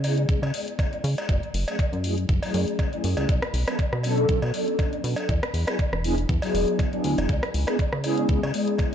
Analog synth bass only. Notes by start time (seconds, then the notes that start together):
Already playing: C#3
0.29 C#2
0.42 C#3
1.04 C#3
1.29 F#1
1.54 F#1
1.93 F#2
2.29 F#1
2.54 F#2
3.04 F#2
3.17 C#2
3.29 B1
3.54 B1
3.93 B2
4.29 B1
4.42 B2
5.04 B2
5.29 E2
5.54 E2
5.93 E1
6.29 E2
6.54 E1
7.04 D2
7.18 E1
7.29 C#2
7.54 C#2
7.93 C#3
8.29 C#2
8.43 C#3